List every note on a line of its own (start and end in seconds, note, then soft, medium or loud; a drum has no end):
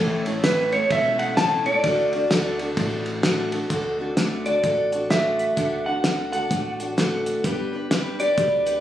0.00 0.80 A1 loud
0.00 0.26 A2 medium
0.00 0.26 E3 medium
0.00 0.26 A3 loud
0.00 0.26 C#4 loud
0.00 0.26 E4 loud
0.00 0.25 A4 loud
0.26 0.44 A3 medium
0.26 0.44 C#4 medium
0.26 0.44 E4 medium
0.26 0.44 A4 medium
0.26 ride medium
0.44 0.73 A2 medium
0.44 0.73 E3 medium
0.44 0.73 A3 medium
0.44 0.73 C#4 medium
0.44 0.72 E4 medium
0.44 0.71 A4 medium
0.44 0.74 B4 medium
0.44 snare loud
0.44 ride medium
0.72 0.89 A3 soft
0.72 0.91 C#4 medium
0.72 0.91 E4 medium
0.72 0.91 A4 medium
0.72 0.89 C#5 medium
0.72 ride medium
0.90 1.73 E1 medium
0.90 1.38 A3 medium
0.90 1.37 C#4 medium
0.90 1.38 E4 medium
0.90 1.39 A4 medium
0.90 1.21 E5 loud
0.90 kick loud
0.90 ride medium
1.19 1.37 F#5 medium
1.19 ride medium
1.37 1.66 A2 medium
1.37 1.66 E3 medium
1.37 1.66 A3 medium
1.37 1.66 C#4 medium
1.37 1.65 E4 medium
1.37 1.64 A4 medium
1.37 1.67 A5 loud
1.37 snare loud
1.37 ride medium
1.66 1.83 A3 soft
1.66 1.84 C#4 soft
1.66 1.84 E4 medium
1.66 1.84 A4 medium
1.66 3.20 D5 medium
1.66 ride medium
1.84 2.66 D2 medium
1.84 2.12 D3 medium
1.84 2.13 A3 medium
1.84 2.13 D4 medium
1.84 2.12 F#4 medium
1.84 2.11 A4 medium
1.84 kick loud
1.84 ride medium
2.12 2.30 D4 soft
2.12 2.31 F#4 soft
2.12 2.30 A4 medium
2.12 ride medium
2.31 2.59 D3 medium
2.31 2.60 A3 medium
2.31 2.60 D4 medium
2.31 2.59 F#4 medium
2.31 2.58 A4 loud
2.31 snare loud
2.31 ride medium
2.59 2.77 D4 medium
2.59 2.78 F#4 medium
2.59 2.77 A4 medium
2.59 ride medium
2.77 3.59 A1 loud
2.77 3.23 A3 medium
2.77 3.23 D4 medium
2.77 3.24 F#4 medium
2.77 3.24 A4 medium
2.77 kick loud
2.77 ride medium
3.06 ride medium
3.23 3.52 D3 medium
3.23 3.53 A3 medium
3.23 3.53 D4 medium
3.23 3.53 F#4 medium
3.23 3.51 A4 loud
3.23 snare loud
3.23 ride medium
3.52 3.71 D4 medium
3.52 3.71 F#4 medium
3.52 3.70 A4 medium
3.52 ride medium
3.70 4.53 D2 medium
3.70 3.99 D3 medium
3.70 4.00 A3 medium
3.70 4.00 D4 medium
3.70 3.99 F#4 medium
3.70 3.98 A4 medium
3.70 kick loud
3.70 closed hi-hat medium
3.99 4.18 D4 soft
3.99 4.18 F#4 soft
3.99 4.17 A4 medium
4.17 4.46 D3 medium
4.17 4.46 A3 medium
4.17 4.47 D4 medium
4.17 4.46 F#4 medium
4.17 4.45 A4 medium
4.17 snare loud
4.17 closed hi-hat medium
4.46 4.63 D4 soft
4.46 4.64 F#4 soft
4.46 4.64 A4 medium
4.46 5.09 D5 medium
4.46 closed hi-hat medium
4.64 5.46 A1 medium
4.64 4.92 A3 medium
4.64 4.93 D4 medium
4.64 4.93 F#4 medium
4.64 4.91 A4 medium
4.64 kick loud
4.64 closed hi-hat medium
4.92 5.10 D4 soft
4.92 5.10 F#4 soft
4.92 5.10 A4 soft
4.92 closed hi-hat medium
5.10 5.55 D3 medium
5.10 5.56 A3 medium
5.10 5.58 D4 medium
5.10 5.57 F#4 medium
5.10 5.57 A4 medium
5.10 5.84 E5 medium
5.10 snare loud
5.10 closed hi-hat medium
5.39 closed hi-hat medium
5.56 6.40 D2 medium
5.56 5.86 D3 medium
5.56 5.86 A3 medium
5.56 5.86 D4 medium
5.56 5.86 F#4 medium
5.56 5.84 A4 medium
5.56 kick loud
5.56 closed hi-hat medium
5.86 6.04 D4 soft
5.86 6.04 F#4 soft
5.86 6.04 A4 soft
5.86 6.31 F#5 medium
6.04 6.32 D3 medium
6.04 6.33 A3 medium
6.04 6.33 D4 medium
6.04 6.32 F#4 medium
6.04 6.31 A4 medium
6.04 snare loud
6.04 closed hi-hat medium
6.32 6.50 D4 soft
6.32 6.51 F#4 soft
6.32 6.50 A4 medium
6.32 6.78 F#5 medium
6.32 closed hi-hat medium
6.50 7.33 A1 medium
6.50 6.79 A3 medium
6.50 6.80 D4 medium
6.50 6.80 F#4 medium
6.50 6.78 A4 medium
6.50 kick loud
6.50 closed hi-hat medium
6.80 6.97 D4 soft
6.80 6.98 F#4 soft
6.80 6.98 A4 soft
6.80 closed hi-hat medium
6.97 7.44 D3 medium
6.97 7.44 A3 medium
6.97 7.44 D4 medium
6.97 7.45 F#4 medium
6.97 7.45 A4 medium
6.97 snare loud
6.97 closed hi-hat medium
7.26 closed hi-hat medium
7.44 8.27 G1 medium
7.44 7.73 G3 medium
7.44 7.73 D4 medium
7.44 7.73 G4 medium
7.44 7.72 B4 medium
7.44 kick medium
7.44 closed hi-hat medium
7.73 7.90 D4 soft
7.73 7.91 G4 medium
7.73 7.91 B4 medium
7.91 8.19 G3 medium
7.91 8.20 D4 medium
7.91 8.19 G4 medium
7.91 8.18 B4 medium
7.91 snare loud
7.91 closed hi-hat medium
8.19 8.37 D4 soft
8.19 8.38 G4 medium
8.19 8.37 B4 medium
8.19 8.80 D5 medium
8.19 closed hi-hat medium
8.38 8.80 D2 medium
8.38 8.66 G3 medium
8.38 8.67 D4 medium
8.38 8.66 G4 medium
8.38 8.64 B4 medium
8.38 kick loud
8.38 closed hi-hat medium
8.66 8.80 D4 soft
8.66 8.80 G4 soft
8.66 8.80 B4 medium
8.66 closed hi-hat medium